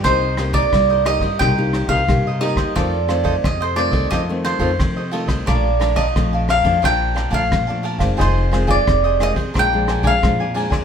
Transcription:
<<
  \new Staff \with { instrumentName = "Cavaquinho" } { \time 4/4 \key f \mixolydian \tempo 4 = 88 c''8. d''8. ees''8 g''8. f''8. ees''8 | d''4 ees''16 c''16 d''8 ees''8 c''4 r8 | d''8. ees''8. f''8 g''8. f''8. r8 | c''8. d''8. ees''8 g''8. f''8. r8 | }
  \new Staff \with { instrumentName = "Cavaquinho" } { \time 4/4 \key f \mixolydian <ees' bes' c'' ees''>8 <ees' bes' c'' ees''>16 <ees' bes' c'' ees''>16 r16 <bes' c'' ees''>16 <ees' bes' c'' ees''>16 <bes' c'' ees''>16 <ees' bes' c'' ees''>8 <ees' bes' c'' ees''>16 <ees' bes' c'' ees''>16 r16 <bes' c'' ees''>16 <ees' bes' c'' ees''>16 <bes' c'' ees''>16 | <f' a' c''>8 <f' a' c'' ees''>16 <f' a' c'' ees''>16 r16 <a' c'' ees''>16 <f' a' c'' ees''>16 <a' c'' ees''>16 <f' a' c'' ees''>8 <f' a' c'' ees''>16 <f' a' c'' ees''>16 r16 <a' c'' ees''>16 <f' a' c'' ees''>16 <a' c'' ees''>16 | <bes' d'' f'' a''>8 <bes' d'' f'' a''>16 <bes' d'' f'' a''>16 r16 <d'' f'' a''>16 <bes' d'' f'' a''>16 <d'' f'' a''>16 <bes' d'' f'' a''>8 <bes' d'' f'' a''>16 <bes' d'' f'' a''>16 r16 <d'' f'' a''>16 <bes' d'' f'' a''>16 <d'' f'' a''>16 | <f' aes' c'' ees''>8 <f' aes' c'' ees''>16 <f' aes' c'' ees''>16 r16 <aes' c'' ees''>16 <f' aes' c'' ees''>16 <aes' c'' ees''>16 <d' bes' d''>8 <d' bes' d'' aes''>16 <d' bes' d'' aes''>16 r16 <bes' d'' aes''>16 <d' bes' d'' aes''>16 <bes' d'' aes''>16 | }
  \new Staff \with { instrumentName = "Nylon-string guitar" } { \time 4/4 \key f \mixolydian << { <bes ees' g'>16 r16 <bes ees' g'>4 <bes ees' g'>16 r16 <bes ees' g'>16 <bes ees' g'>8 <bes ees' g'>16 <bes ees' g'>16 r16 <bes ees' g'>8 | <ees a c'>16 r16 <ees a c'>8. r16 <ees a c'>8 <ees a c'>16 <ees a c'>8 <ees a c'>16 <ees a c'>16 r16 <ees a c'>8 | <f a d'>16 r16 <f a d'>16 r16 <f a>8 r16 <f a d'>16 <f d'>8 r16 <f a d'>8 <f a d'>8 <ees aes c'>16~ | <ees aes c'>8 <ees aes c'>8. r16 <ees aes c'>16 r16 <f aes d'>16 <f aes d'>8 <f aes d'>16 <f aes d'>16 r16 <f aes d'>8 | } \\ { c4 g,4 c4 g,4 | f,4 c4 f,4 c4 | bes,4 f,4 bes,4 f,4 | f,4 c4 bes,4 f,4 | } >> }
  \new Staff \with { instrumentName = "Upright bass" } { \clef bass \time 4/4 \key f \mixolydian c,4 c,8. g,16 c,8. c,16 c8. ees,16 | f,4 f,8. c,16 f,8. f,16 f8. c,16 | bes,,4 bes,,8. f,16 bes,,8. bes,,16 bes,8. fis,,16 | f,,4 f,,8. f,16 bes,,8. bes,,16 bes,8. d,16 | }
  \new DrumStaff \with { instrumentName = "Drums" } \drummode { \time 4/4 <bd cymr ss>8 <cymr ss>16 <bd cymr>16 <bd cymr ss>8 <cymr ss>16 <bd cymr>16 <bd cymr ss>8 <cymr ss>16 <bd cymr>16 <bd cymr ss>8 cymr16 <bd cymr ss>16 | <bd cymr ss>8 <cymr ss>16 <bd cymr>16 <bd cymr ss>8 <cymr ss>16 <bd cymr>16 <bd cymr ss>8 <cymr ss>16 <bd cymr>16 <bd cymr ss>8 cymr16 <bd cymr ss>16 | <bd cymr ss>8 <cymr ss>16 <bd cymr>16 <bd cymr ss>8 <cymr ss>16 <bd cymr>16 <bd cymr ss>8 <cymr ss>16 <bd cymr>16 <bd cymr ss>8 cymr16 <bd cymr ss>16 | <bd cymr ss>8 <cymr ss>16 <bd cymr>16 <bd cymr ss>8 <cymr ss>16 <bd cymr>16 <bd cymr ss>8 <cymr ss>16 <bd cymr>16 <bd cymr ss>8 cymr16 <bd cymr ss>16 | }
>>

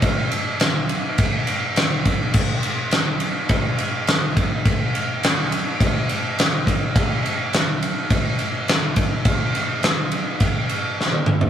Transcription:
\new DrumStaff \with { instrumentName = "Drums" } \drummode { \time 4/4 \tempo 4 = 104 <bd cymr>8 cymr8 <cymr sn>8 cymr8 <bd cymr>8 cymr8 <cymr sn>8 <bd cymr>8 | <cymc bd>8 cymr8 <cymr sn>8 cymr8 <bd cymr>8 cymr8 <cymr sn>8 <bd cymr>8 | <bd cymr>8 cymr8 <cymr sn>8 cymr8 <bd cymr>8 cymr8 <cymr sn>8 <bd cymr>8 | <bd cymr>8 cymr8 <cymr sn>8 cymr8 <bd cymr>8 cymr8 <cymr sn>8 <bd cymr>8 |
<bd cymr>8 <cymr sn>8 <cymr sn>8 cymr8 <bd cymr>8 cymr8 sn16 tommh16 toml16 tomfh16 | }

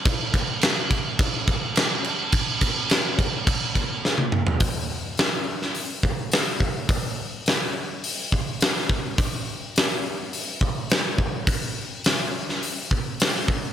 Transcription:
\new DrumStaff \with { instrumentName = "Drums" } \drummode { \time 4/4 \tempo 4 = 105 <cymc bd>8 <cymc bd>8 <cymc sn>8 <cymc bd>8 <cymc bd>8 <cymc bd>8 <cymc sn>8 cymc8 | <cymc bd>8 <cymc bd>8 <cymc sn>8 <cymc bd>8 <cymc bd>8 <cymc bd>8 sn16 tommh16 toml16 tomfh16 | <hho bd>4 <hho sn>8. sn16 hho8 bd8 <hho sn>8 bd8 | <hho bd>4 <hho sn>4 hho8 bd8 <hho sn>16 sn16 bd8 |
<hho bd>4 <hho sn>4 hho8 bd8 <hho sn>8 bd8 | <hho bd>4 <hho sn>8. sn16 hho8 bd8 <hho sn>16 sn16 bd8 | }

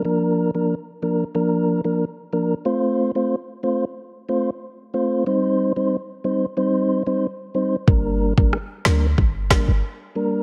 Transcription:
<<
  \new Staff \with { instrumentName = "Tonewheel organ" } { \time 4/4 \key g \minor \tempo 4 = 92 <f bes d' bes'>8. <f bes d' bes'>16 r8 <f bes d' bes'>16 r16 <f bes d' bes'>8. <f bes d' bes'>16 r8 <f bes d' bes'>16 r16 | <a c' f' c''>8. <a c' f' c''>16 r8 <a c' f' c''>16 r8. <a c' f' c''>16 r8. <a c' f' c''>8 | <g c' ees' c''>8. <g c' ees' c''>16 r8 <g c' ees' c''>16 r16 <g c' ees' c''>8. <g c' ees' c''>16 r8 <g c' ees' c''>16 r16 | <g bes d' bes'>8. <g bes d' bes'>16 r8 <g bes d' bes'>16 r8. <g bes d' bes'>16 r8. <g bes d' bes'>8 | }
  \new Staff \with { instrumentName = "808-style bass" } { \clef bass \time 4/4 \key g \minor r1 | r1 | r1 | g,,8. g,,16 r8 d,8 g,,8. g,,16 r4 | }
  \new DrumStaff \with { instrumentName = "Drums" } \drummode { \time 4/4 r4 r4 r4 r4 | r4 r4 r4 r4 | r4 r4 r4 r4 | bd8. bd16 ss8 <ss sn>8 bd8 <bd ss sn>8 r4 | }
>>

